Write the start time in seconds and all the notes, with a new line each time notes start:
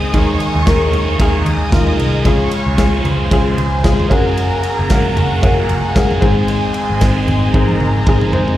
Already playing: D#3 G#3 C4 D#4 G#4 D#5 C6 D#6
0.13 D#2 D#3 G#3 A#3 D#4 G#4 C#5 A#5 C#6, kick, ride
0.40 A#3 D#4 G#4, ride
0.55 D#2
0.66 D#2 D#3 G#3 A#3 D#4 G#4 A#4, kick, snare, ride
0.92 D#2, floor tom, ride
1.19 D#2 D#3 G#3 A#3 D#4 G#4, kick, ride
1.46 D#2 D#5 D#6, ride
1.72 D#2 D#3 G#3 A#3 D#4 F4 G#4, kick, snare, ride
1.87 floor tom
1.99 C2 A#3 D#4 G#4, ride
2.25 C#2 C#3 F3 G#3 C#4 F4 G#4 C#5 F5 G#5 C#6, kick, ride
2.51 G#3 C#4 G#4, ride
2.66 C#2
2.78 C#2 F3 G#3 C#4 F4 G#4, kick, snare, ride
3.05 C#2 C5 C6, floor tom, ride
3.30 C#2 C#3 F3 G#3 C#4 F4 G#4, kick, ride
3.58 C#2, ride
3.83 C#2 F3 G#3 C#4 F4 G#4, kick, snare, ride
4.00 floor tom
4.09 F#1 F#3 A#3 C#4 F#4 G#4 A#4 F#5 A#5, kick, ride
4.37 ride
4.63 A#3 C#4 G#4, ride
4.79 F#1
4.90 F#1 F#3 A#3 C#4 F#4 G#4 A#4, kick, snare, ride
5.16 F#1 A#3 C#4 F#4 G#4 F#5, floor tom, ride
5.42 F#1 F#3 A#3 C#4 F#4 G#4, kick, ride
5.69 F#1, ride
5.95 F#1 F#3 A#3 C#4 F#4 G#4, kick, snare, ride
6.11 floor tom
6.21 G#1 G#2 G#3 C4 D#4 G#4 C5 D#5 G#5 C6, kick, ride
6.48 G#2 D#3 G#3 C4 D#4 G#4, ride
6.74 G#3 C4 D#4 G#4, ride
6.90 G#1
7.00 G#1 G#3 C4 D#4 G#4, kick, snare, ride
7.28 G#1, floor tom, ride
7.53 G#1 G#2 D#3 G#3 C4 D#4 G#4 A#4 A#5, kick, high tom
7.69 high tom
7.80 G#1, mid tom
8.07 G#1 G#3 C4 D#4 G#4, kick, mid tom
8.21 mid tom
8.32 F#1 C4 C5, floor tom
8.48 floor tom